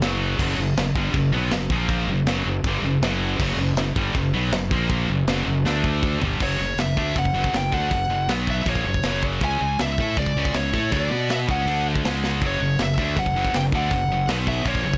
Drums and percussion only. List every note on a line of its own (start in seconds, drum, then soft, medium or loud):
0.02 snare loud
0.02 china medium
0.39 kick medium
0.39 crash medium
0.39 china medium
0.77 snare loud
0.77 china medium
0.96 kick loud
1.14 kick loud
1.14 china medium
1.51 snare loud
1.51 china medium
1.70 kick loud
1.88 kick medium
1.88 china medium
2.27 snare loud
2.27 china medium
2.64 kick loud
2.64 china medium
3.02 snare loud
3.02 china medium
3.40 kick loud
3.40 china medium
3.40 crash medium
3.77 snare loud
3.77 china medium
3.96 kick loud
4.15 kick medium
4.15 china medium
4.52 snare loud
4.52 china medium
4.71 kick loud
4.90 kick medium
4.90 china medium
5.27 snare loud
5.27 china medium
5.66 snare medium
5.84 kick medium
6.03 kick medium
6.22 floor tom medium
6.40 kick loud
6.40 crash medium
6.78 snare loud
6.78 open hi-hat medium
6.97 kick medium
7.16 kick loud
7.16 open hi-hat medium
7.25 kick medium
7.44 kick medium
7.54 snare loud
7.54 open hi-hat medium
7.72 kick medium
7.91 kick loud
7.91 open hi-hat medium
8.29 snare loud
8.29 open hi-hat medium
8.47 kick medium
8.66 kick loud
8.66 open hi-hat medium
8.75 kick medium
8.94 kick medium
9.03 snare loud
9.03 open hi-hat soft
9.23 kick medium
9.41 kick loud
9.41 open hi-hat medium
9.79 snare loud
9.79 open hi-hat medium
9.98 kick medium
10.17 kick loud
10.17 open hi-hat medium
10.26 kick medium
10.45 kick medium
10.54 snare loud
10.54 open hi-hat medium
10.74 kick medium
10.92 kick medium
10.92 open hi-hat soft
11.30 snare loud
11.30 open hi-hat medium
11.49 kick loud
11.68 open hi-hat medium
11.95 kick medium
12.05 snare loud
12.05 open hi-hat medium
12.24 snare medium
12.41 kick loud
12.41 open hi-hat soft
12.79 snare loud
12.79 open hi-hat medium
12.98 kick medium
13.17 kick loud
13.17 open hi-hat medium
13.26 kick medium
13.45 kick medium
13.54 snare loud
13.54 open hi-hat medium
13.72 kick medium
13.91 kick loud
13.91 open hi-hat medium
14.28 snare loud
14.28 open hi-hat medium
14.47 kick medium
14.66 kick loud
14.66 open hi-hat medium
14.75 kick medium
14.94 kick medium